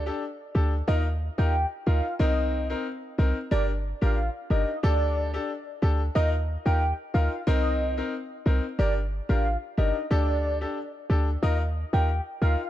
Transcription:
0.00 0.11 D2 loud
0.06 0.22 D4 medium
0.06 0.22 G4 medium
0.06 0.22 A4 medium
0.55 0.82 D2 medium
0.55 0.72 D4 medium
0.55 0.72 G4 medium
0.55 0.72 A4 medium
0.88 1.30 D#2 loud
0.88 1.05 D#4 medium
0.88 1.05 F4 medium
0.88 1.05 A#4 loud
0.88 1.03 D#5 loud
1.38 1.66 D#2 medium
1.38 1.53 D#4 medium
1.38 1.54 F4 medium
1.38 1.54 A#4 medium
1.38 1.66 G5 medium
1.86 2.01 D2 medium
1.86 2.04 D#4 medium
1.86 2.04 F4 medium
1.86 2.04 A#4 medium
1.86 2.15 F5 medium
2.19 2.75 C2 medium
2.19 2.66 C4 medium
2.19 2.66 D#4 medium
2.19 2.66 A#4 loud
2.19 2.67 D#5 loud
2.70 2.85 C4 medium
2.70 2.85 D#4 medium
2.70 2.86 A#4 medium
3.18 3.33 C2 medium
3.18 3.36 C4 medium
3.18 3.36 D#4 medium
3.18 3.36 A#4 medium
3.51 3.94 G1 loud
3.51 3.69 D4 medium
3.51 3.69 G4 medium
3.51 3.69 A#4 loud
3.51 3.66 D5 loud
4.01 4.29 A1 medium
4.01 4.17 D4 medium
4.01 4.17 G4 medium
4.01 4.17 A#4 medium
4.01 4.30 F5 medium
4.50 4.65 G1 loud
4.50 4.68 D4 medium
4.50 4.68 G4 medium
4.50 4.68 A#4 medium
4.50 4.78 D#5 medium
4.83 5.38 D2 loud
4.83 5.30 D4 medium
4.83 5.30 G4 medium
4.83 5.30 A4 loud
4.83 5.31 D5 loud
5.34 5.49 D4 medium
5.34 5.49 G4 medium
5.34 5.49 A4 medium
5.82 6.10 D2 medium
5.82 5.99 D4 medium
5.82 6.00 G4 medium
5.82 6.00 A4 medium
6.15 6.57 D#2 loud
6.15 6.32 D#4 medium
6.15 6.33 F4 medium
6.15 6.33 A#4 loud
6.15 6.30 D#5 loud
6.65 6.93 D#2 medium
6.65 6.81 D#4 medium
6.65 6.81 F4 medium
6.65 6.81 A#4 medium
6.65 6.94 G5 medium
7.14 7.29 D2 medium
7.14 7.31 D#4 medium
7.14 7.32 F4 medium
7.14 7.32 A#4 medium
7.14 7.42 F5 medium
7.47 8.02 C2 medium
7.47 7.93 C4 medium
7.47 7.93 D#4 medium
7.47 7.94 A#4 loud
7.47 7.95 D#5 loud
7.97 8.13 C4 medium
7.97 8.13 D#4 medium
7.97 8.13 A#4 medium
8.46 8.61 C2 loud
8.46 8.63 C4 medium
8.46 8.63 D#4 medium
8.46 8.63 A#4 medium
8.79 9.21 G1 loud
8.79 8.96 D4 medium
8.79 8.96 G4 medium
8.79 8.96 A#4 loud
8.79 8.94 D5 loud
9.29 9.57 A1 medium
9.29 9.45 D4 medium
9.29 9.45 G4 medium
9.29 9.45 A#4 medium
9.29 9.57 F5 medium
9.78 9.92 G1 loud
9.78 9.95 D4 medium
9.78 9.95 G4 medium
9.78 9.95 A#4 medium
9.78 10.06 D#5 medium
10.11 10.66 D2 loud
10.11 10.57 D4 medium
10.11 10.57 G4 medium
10.11 10.57 A4 loud
10.11 10.58 D5 loud
10.61 10.77 D4 medium
10.61 10.77 G4 medium
10.61 10.77 A4 medium
11.10 11.37 D2 medium
11.10 11.27 D4 medium
11.10 11.27 G4 medium
11.10 11.27 A4 medium
11.43 11.85 D#2 loud
11.43 11.60 D#4 medium
11.43 11.60 F4 medium
11.43 11.60 A#4 loud
11.43 11.58 D#5 loud
11.93 12.21 D#2 medium
11.93 12.08 D#4 medium
11.93 12.09 F4 medium
11.93 12.09 A#4 medium
11.93 12.21 G5 medium
12.41 12.56 D2 medium
12.41 12.59 D#4 medium
12.41 12.59 F4 medium
12.41 12.59 A#4 medium
12.41 12.69 F5 medium

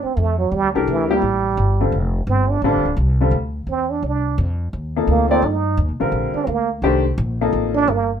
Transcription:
0.03 0.19 C4 medium
0.03 muted upright bass stroke soft
0.17 0.51 F2 loud
0.17 0.38 A3 medium
0.39 0.53 F#3 medium
0.52 0.63 E2 medium
0.52 0.72 G3 loud
0.63 0.75 D2 medium
0.73 0.87 C2 medium
0.73 0.88 C3 soft
0.73 1.07 E3 medium
0.73 1.07 D4 medium
0.73 1.08 G4 medium
0.73 1.07 A4 medium
0.73 1.08 A#4 medium
0.86 1.21 D2 medium
0.86 1.11 E3 medium
1.09 1.22 C3 medium
1.09 1.22 F3 medium
1.09 1.93 G3 medium
1.09 1.22 A#3 medium
1.09 1.22 E4 medium
1.09 1.22 G4 medium
1.22 1.56 A1 medium
1.57 1.91 G1 loud
1.80 1.92 D3 medium
1.80 1.92 G3 medium
1.80 1.92 C4 medium
1.80 1.92 F4 medium
1.80 1.92 A4 medium
1.92 2.26 F1 medium
2.27 2.61 G1 medium
2.27 2.52 C4 medium
2.51 2.63 D4 medium
2.62 2.74 A1 medium
2.62 2.83 D3 medium
2.62 2.83 G3 medium
2.62 2.83 C4 medium
2.62 2.96 D4 medium
2.62 2.83 F4 medium
2.62 2.84 A4 loud
2.74 2.85 F1 medium
2.85 2.96 D1 medium
2.97 3.31 C2 loud
3.20 3.32 D3 medium
3.20 3.32 G3 medium
3.20 3.32 C4 medium
3.20 3.32 F4 medium
3.20 3.32 A4 medium
3.31 3.66 D2 medium
3.67 4.01 E2 medium
3.67 3.92 C4 medium
3.90 4.03 D4 medium
4.03 4.37 C2 medium
4.07 4.38 D4 medium
4.38 4.72 F2 loud
4.73 5.07 D#2 medium
4.96 5.29 C3 medium
4.96 5.29 F3 medium
4.96 5.29 A#3 medium
4.96 5.29 D#4 medium
4.96 5.29 A4 medium
5.07 5.42 D2 medium
5.07 5.29 A#3 medium
5.29 5.42 F3 medium
5.29 5.42 A#3 medium
5.29 5.47 C4 medium
5.29 5.42 D#4 medium
5.29 5.42 A4 medium
5.29 5.42 D5 medium
5.42 5.77 G2 medium
5.42 5.79 D#4 medium
5.77 5.90 D#2 loud
5.89 6.00 C2 medium
6.00 6.11 A#1 medium
6.00 6.46 D3 medium
6.00 6.46 G3 medium
6.00 6.46 C4 medium
6.00 6.46 F4 medium
6.00 6.46 A#4 medium
6.12 6.33 A#1 medium
6.34 6.49 D4 medium
6.34 muted upright bass stroke soft
6.47 6.81 D2 medium
6.47 6.70 A#3 medium
6.82 7.17 C2 medium
6.82 7.04 D#3 medium
6.82 7.03 A3 medium
6.82 7.03 D4 medium
6.82 7.03 G4 medium
6.82 7.04 C5 loud
7.18 7.52 A#1 loud
7.41 7.87 C3 medium
7.41 7.87 F3 medium
7.41 7.87 A#3 medium
7.41 7.87 D#4 medium
7.41 7.87 A4 medium
7.53 7.87 A1 medium
7.75 7.91 D4 loud
7.88 8.20 G1 medium
7.88 8.11 A#3 medium

